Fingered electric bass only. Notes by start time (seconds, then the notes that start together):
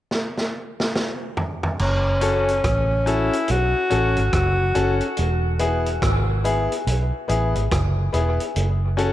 1.80 F#1
2.64 A1
3.50 B1
3.92 A1
4.18 G#1
4.33 F#1
4.76 F#1
5.19 E1
6.03 G#1
6.87 B1
7.30 A1
7.55 G#1
7.72 F#1
8.14 E1
8.56 F#1